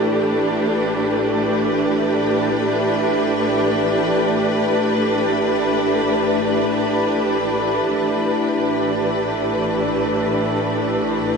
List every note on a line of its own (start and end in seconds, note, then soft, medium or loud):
0.00 7.88 A1 medium
0.00 7.91 E3 medium
0.00 7.94 A3 medium
0.00 11.37 A3 medium
0.00 11.37 D4 medium
0.00 11.37 E4 medium
0.00 11.37 G4 medium
0.00 11.37 B4 medium
7.92 11.37 A1 medium
7.92 11.37 E3 medium
8.84 11.37 A3 medium